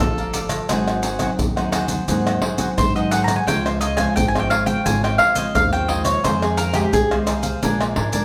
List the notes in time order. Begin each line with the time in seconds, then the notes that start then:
0.00 G1 F3 A3 D4 F4 A4
0.18 D5 F5 A#5, pandeiro, maracas
0.34 D5 F5, pandeiro, maracas, surdo
0.49 pandeiro, tamborim, maracas
0.69 G#1 G#2 F#3 C4 D#4 F#4 G#4 C5 F#5, pandeiro, tamborim, maracas, surdo
0.88 pandeiro, tamborim, maracas
1.02 F#4 G#4 C5 F#5, pandeiro, maracas
1.19 F#3 C4 D#4 F#4 G#4 C5 F#5, pandeiro, tamborim, maracas, surdo
1.39 D#2 D#3, pandeiro, maracas, surdo
1.56 F#3 C4 D#4 G#4 C5 F#5, pandeiro, tamborim, maracas
1.72 F#4 G#4 C5 F#5, pandeiro, tamborim, maracas
1.88 F#3 C4 D#4 G#4 C5 F#5, pandeiro, maracas, surdo
2.08 D#2 G#2 F#3 C4 D#4 F#4 G#4 C5 F#5, pandeiro, maracas, surdo
2.27 G#4 C5 F#5, pandeiro, tamborim, maracas
2.42 F#4 G#4 C5 F#5, pandeiro, tamborim, surdo
2.58 F#3 C4 D#4 F#4 G#4 C5 F#5, pandeiro, maracas, surdo
2.77 G#2 D#3 C5, pandeiro, tamborim, maracas, surdo
2.95 F#3 C4 D#4 G#4 C5 D#5 F#5, pandeiro, maracas
3.11 F#4 G#4 C5 F#5, pandeiro, maracas
3.24 A#5, pandeiro, tamborim, maracas
3.36 G#5
3.46 C#2 C#3 F3 G#3 F4 C5 C#5 F5 G5, pandeiro, tamborim, maracas, surdo
3.66 C5, pandeiro, tamborim, maracas
3.80 F4 C5 C#5 D#5 F5, pandeiro, maracas
3.96 F3 G#3 C4 F4 C5 C#5 F5 G#5, pandeiro, tamborim, maracas, surdo
4.16 G#1 G#2 G5, pandeiro, maracas, surdo
4.28 G#5
4.35 F3 G#3 C4 C5 C#5 F5, pandeiro, tamborim, maracas
4.39 G5
4.50 F4 C5 C#5 F5, pandeiro, tamborim
4.66 F3 G#3 C4 C5 C#5 F5 G5, pandeiro, maracas, surdo
4.85 G#1 C#3 F3 G#3 C4 F4 C5 C#5 F5 G#5, pandeiro, maracas, surdo
5.03 C5 C#5 F5 G5, pandeiro, tamborim, maracas
5.18 F4 C5 C#5 F5, pandeiro, tamborim, surdo
5.35 F3 G#3 C4 F4 C5 C#5 D#5 F5, pandeiro, maracas, surdo
5.55 D#2 G#2 F5, pandeiro, tamborim, maracas, surdo
5.72 F3 G#3 C4 C5 C#5 F5 G5, pandeiro, maracas
5.88 F4 C5 C#5 D#5 F5, pandeiro, surdo
6.04 C#5, pandeiro, tamborim, maracas
6.24 F2 D#3 G#3 C4 D#4 G#4 C5 F5, pandeiro, tamborim, maracas, surdo
6.42 G#4, pandeiro, tamborim, maracas
6.57 D#4 G#4 A#4 C5 F5, pandeiro, maracas
6.73 D#3 G#3 C4 D#4 G4 G#4 C5 F5, pandeiro, tamborim, maracas, surdo
6.93 C2 C3 G#4, pandeiro, maracas, surdo
7.11 D#3 G#3 C4 G#4 C5 F5, pandeiro, tamborim, maracas
7.27 D#4 G#4 C5 F5, pandeiro, tamborim, maracas
7.43 G#4 C5 F5, pandeiro, maracas, surdo
7.62 A#1 A#2 F3 G#3 D4 A#4 D5 G#5, pandeiro, maracas, surdo
7.80 A#4 D5 G#5, pandeiro, tamborim, maracas
7.96 G#2 D4 A#4 D5 G#5, pandeiro, tamborim, surdo
8.12 F3 G#3 D4 A#4 D5 G#5, pandeiro, maracas, surdo